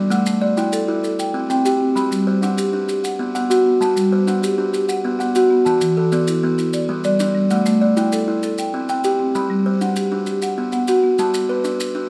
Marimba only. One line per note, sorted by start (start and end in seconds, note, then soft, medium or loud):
0.00 0.26 G3 medium
0.00 0.26 D5 medium
0.11 0.42 F#5 medium
0.27 0.57 A3 medium
0.57 1.04 G5 medium
0.73 1.02 A4 medium
1.03 1.19 A4 medium
1.19 1.49 G5 medium
1.50 1.80 C4 medium
1.50 1.64 G5 medium
1.66 2.12 G5 medium
1.81 2.12 C4 medium
1.95 2.27 B5 medium
2.11 2.42 G3 medium
2.42 2.89 F#5 medium
2.57 2.87 G4 medium
2.88 3.04 G4 medium
3.04 3.34 F#5 medium
3.35 3.64 B3 medium
3.35 3.49 F#5 medium
3.50 3.96 F#5 medium
3.66 3.96 B3 medium
3.81 4.12 A5 medium
3.96 4.27 G3 medium
4.27 4.74 F#5 medium
4.42 4.72 G4 medium
4.73 4.89 G4 medium
4.88 5.18 F#5 medium
5.19 5.49 B3 medium
5.19 5.34 F#5 medium
5.35 5.81 F#5 medium
5.50 5.81 B3 medium
5.65 5.96 A5 medium
5.81 6.12 E3 medium
6.12 6.58 D5 medium
6.27 6.57 E4 medium
6.58 6.74 E4 medium
6.73 7.04 D5 medium
7.05 7.34 G3 medium
7.05 7.18 D5 medium
7.20 7.66 D5 medium
7.35 7.66 G3 medium
7.50 7.81 F#5 medium
7.66 7.97 A3 medium
7.97 8.43 G5 medium
8.12 8.42 A4 medium
8.43 8.58 A4 medium
8.58 8.88 G5 medium
8.89 9.18 C4 medium
8.89 9.03 G5 medium
9.04 9.50 G5 medium
9.20 9.50 C4 medium
9.35 9.66 B5 medium
9.50 9.81 G3 medium
9.81 10.27 F#5 medium
9.97 10.26 G4 medium
10.27 10.43 G4 medium
10.43 10.71 F#5 medium
10.73 11.02 B3 medium
10.73 10.87 F#5 medium
10.88 11.34 F#5 medium
11.03 11.34 B3 medium
11.19 11.50 A5 medium